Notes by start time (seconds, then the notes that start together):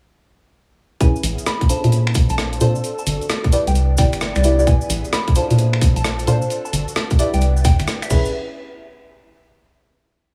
1.00 B3 C#4 E4 G#4 B4 G#5, kick, closed hi-hat, cabasa
1.16 cabasa
1.23 A1, open hi-hat, cabasa
1.38 closed hi-hat, cabasa
1.46 B5, cross-stick, cabasa
1.61 kick, closed hi-hat
1.69 D4 F4 A4 C5 A5, open hi-hat, cabasa
1.84 A#2, closed hi-hat, cabasa
1.92 C4 D4 F4 A4, closed hi-hat, cabasa
2.07 finger snap
2.15 kick, open hi-hat, cabasa
2.29 A#1 A5, closed hi-hat, cabasa
2.38 cross-stick, cabasa
2.53 closed hi-hat, cabasa
2.61 A#2 D4 F4 A4 C5 A5, open hi-hat, cabasa
2.75 cabasa
2.84 B3 D4 F#4, closed hi-hat, cabasa
2.98 A5, cabasa
3.07 G1, open hi-hat, cabasa
3.21 closed hi-hat, cabasa
3.29 finger snap, cross-stick, cabasa
3.44 kick, closed hi-hat
3.52 E4 G4 B4 D5, open hi-hat, cabasa
3.67 C2 G5, closed hi-hat, cabasa
3.75 closed hi-hat, cabasa
3.97 G1 E4 G4 B4 D5 G5, kick, open hi-hat, cabasa
4.13 finger snap, closed hi-hat, cabasa
4.21 cross-stick, cabasa
4.35 C2 D5, finger snap, closed hi-hat, cabasa
4.44 E4 G4 B4 D5, open hi-hat, cabasa
4.59 E4 G4 B4 D5, cabasa
4.67 C#4 G#4 G#5, kick, closed hi-hat, cabasa
4.81 cabasa
4.90 A1, open hi-hat, cabasa
5.05 closed hi-hat, cabasa
5.13 B5, cross-stick, cabasa
5.28 kick, closed hi-hat
5.35 D4 F4 A4 C5 A5, open hi-hat, cabasa
5.50 A#2, closed hi-hat, cabasa
5.58 C4 D4 F4 A4, closed hi-hat, cabasa
5.73 finger snap
5.81 kick, open hi-hat, cabasa
5.96 A#1 A5, closed hi-hat, cabasa
6.04 cross-stick, cabasa
6.19 closed hi-hat, cabasa
6.27 A#2 D4 F4 A4 C5 A5, open hi-hat, cabasa
6.42 cabasa
6.50 B3 F#4, closed hi-hat, cabasa
6.65 A5, cabasa
6.73 G1, open hi-hat, cabasa
6.88 closed hi-hat, cabasa
6.96 finger snap, cross-stick, cabasa
7.10 kick, closed hi-hat, cabasa
7.19 D4 E4 G4 B4 D5, open hi-hat, cabasa
7.34 C2 G5, closed hi-hat, cabasa
7.41 closed hi-hat, cabasa
7.57 cabasa
7.65 E2 G5, kick, open hi-hat, cabasa
7.79 G1, finger snap, closed hi-hat, cabasa
7.88 cross-stick, cabasa
8.02 E5, finger snap, closed hi-hat, cabasa
8.10 A1 C#4 E4 G#4 B4 E5, kick, crash, cabasa
8.25 cabasa